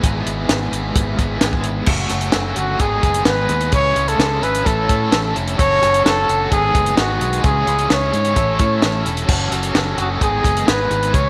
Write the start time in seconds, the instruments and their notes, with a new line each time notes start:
Already playing: string machine G#4 E5 B5
0.03 fingered electric bass G#1, overdriven electric guitar G#2 E3 G#3 B3 E4 G#4, string machine G#5, kick, closed hi-hat
0.26 fingered electric bass G#1, closed hi-hat
0.49 fingered electric bass G#1, snare, closed hi-hat
0.71 fingered electric bass G#1, overdriven electric guitar G#3 B3 E4 G#4, closed hi-hat
0.95 fingered electric bass G#1, kick, closed hi-hat
1.17 fingered electric bass G#1, overdriven electric guitar G#2 E3 G#3 B3 E4 G#4, kick, closed hi-hat
1.41 fingered electric bass G#1, overdriven electric guitar G#2 E3 G#3 B3 E4 G#4, snare, closed hi-hat
1.53 kick
1.64 closed hi-hat
1.86 fingered electric bass F#1, overdriven electric guitar F#2 C#3 F#3 A3 C#4 F#4 A4, string machine A4 F#5 G#5 C#6, kick, crash
2.09 fingered electric bass F#1, overdriven electric guitar F#2 C#3 F#3 A3 C#4 F#4 A4, snare, closed hi-hat
2.21 closed hi-hat
2.32 fingered electric bass F#1, overdriven electric guitar F#2 C#3 F#3 A3 C#4 F#4 A4, snare, closed hi-hat
2.56 fingered electric bass G1, overdriven electric guitar F#2 C#3 F#3 A3 C#4 F#4 A4, trumpet F#4, closed hi-hat
2.79 fingered electric bass G#1, overdriven electric guitar G#2 D#3 G#3 B3 D#4 G#4, trumpet G#4, string machine B4 D#5 D#6, kick, closed hi-hat
3.03 fingered electric bass F#1, overdriven electric guitar G#2 D#3 G#3 B3 D#4 G#4, kick, closed hi-hat
3.14 closed hi-hat
3.25 fingered electric bass G#1, overdriven electric guitar G#2 D#3 G#3 B3 D#4 G#4, trumpet B4, snare, closed hi-hat
3.49 fingered electric bass D#2, overdriven electric guitar G#2 D#3 G#3 B3 D#4 G#4, closed hi-hat
3.61 closed hi-hat
3.72 fingered electric bass C#2, overdriven electric guitar C#3 G#3 C#4 E4 G#4, string machine C#5 E5 E6, trumpet C#5, kick, closed hi-hat
3.96 fingered electric bass C#2, overdriven electric guitar C#3 G#3 C#4 E4 G#4, closed hi-hat
4.08 trumpet A4, closed hi-hat
4.18 fingered electric bass C#2, overdriven electric guitar C#3 G#3 C#4 E4 G#4, snare, closed hi-hat
4.42 fingered electric bass G#1, overdriven electric guitar C#3 G#3 C#4 E4 G#4, trumpet B4, closed hi-hat
4.55 closed hi-hat
4.65 fingered electric bass A1, overdriven electric guitar A2 A3 C#4 E4 A4, trumpet A4, string machine A5, kick, closed hi-hat
4.89 overdriven electric guitar A2 A3 C#4 E4 A4, fingered electric bass A2, kick, closed hi-hat
5.11 fingered electric bass A1, overdriven electric guitar A2 A3 C#4 E4 A4, snare, closed hi-hat
5.34 fingered electric bass F1, overdriven electric guitar A2 A3 C#4 E4 A4, closed hi-hat
5.48 closed hi-hat
5.58 fingered electric bass F#1, overdriven electric guitar F#3 C#4 F#4 A4, string machine A4 F#5 G#5 C#6, trumpet C#5, kick, closed hi-hat
5.81 fingered electric bass F#1, overdriven electric guitar F#3 C#4 F#4 A4, snare, closed hi-hat
5.94 closed hi-hat
6.05 fingered electric bass F#1, overdriven electric guitar F#3 C#4 F#4 A4, trumpet A4, snare, closed hi-hat
6.27 fingered electric bass F#1, overdriven electric guitar F#3 C#4 F#4 A4, closed hi-hat
6.51 fingered electric bass G#1, overdriven electric guitar G#2 D#3 G#3 B3 D#4 G#4, trumpet G#4, string machine B4 D#5 G#5 D#6, kick, closed hi-hat
6.74 fingered electric bass F#1, overdriven electric guitar G#2 D#3 G#3 B3 D#4 G#4, kick, closed hi-hat
6.86 closed hi-hat
6.97 fingered electric bass G#1, overdriven electric guitar G#2 D#3 G#3 B3 D#4 G#4, trumpet F#4, snare, closed hi-hat
7.20 fingered electric bass B1, overdriven electric guitar G#2 D#3 G#3 B3 D#4 G#4, closed hi-hat
7.33 closed hi-hat
7.43 fingered electric bass C#2, overdriven electric guitar C#3 G#3 C#4 E4 G#4, trumpet G#4, string machine C#5 E5 G#5 E6, kick, closed hi-hat
7.66 fingered electric bass C#2, overdriven electric guitar C#3 G#3 C#4 E4 G#4, closed hi-hat
7.79 closed hi-hat
7.89 fingered electric bass C#2, overdriven electric guitar C#3 G#3 C#4 E4 G#4, trumpet C#5, snare, closed hi-hat
8.11 fingered electric bass G#2, overdriven electric guitar C#3 G#3 C#4 E4 G#4, closed hi-hat
8.25 closed hi-hat
8.35 fingered electric bass A1, overdriven electric guitar A2 A3 C#4 E4 A4, string machine C#5 E5 A5, kick, closed hi-hat
8.58 overdriven electric guitar A2 A3 C#4 E4 A4, fingered electric bass A2, kick, closed hi-hat
8.82 fingered electric bass A1, overdriven electric guitar A2 A3 C#4 E4 A4, snare, closed hi-hat
9.05 fingered electric bass E1, overdriven electric guitar A2 A3 C#4 E4 A4, closed hi-hat
9.17 closed hi-hat
9.27 fingered electric bass F#1, overdriven electric guitar F#3 C#4 F#4 A4, string machine A4 F#5 G#5 C#6, kick, crash
9.51 fingered electric bass F#1, overdriven electric guitar F#3 C#4 F#4 A4, closed hi-hat
9.63 closed hi-hat
9.74 fingered electric bass F#1, overdriven electric guitar F#3 C#4 F#4 A4, snare, closed hi-hat
9.97 fingered electric bass F#1, overdriven electric guitar F#3 C#4 F#4 A4, trumpet F#4, closed hi-hat
10.02 glockenspiel D#6
10.19 fingered electric bass G#1, overdriven electric guitar G#2 D#3 G#3 B3 D#4 G#4, trumpet G#4, string machine B4 D#5 D#6, kick, closed hi-hat
10.23 glockenspiel D#6
10.43 fingered electric bass F#1, overdriven electric guitar G#2 D#3 G#3 B3 D#4 G#4, kick, closed hi-hat
10.57 closed hi-hat
10.66 fingered electric bass G#1, overdriven electric guitar G#2 D#3 G#3 B3 D#4 G#4, trumpet B4, glockenspiel G#6, snare, closed hi-hat
10.90 fingered electric bass G#1, overdriven electric guitar G#2 D#3 G#3 B3 D#4 G#4, closed hi-hat
11.03 closed hi-hat
11.12 fingered electric bass C#2, overdriven electric guitar C#3 G#3 C#4 E4 G#4, string machine E4 G#4 C#5, trumpet C#5, glockenspiel G#6, kick, closed hi-hat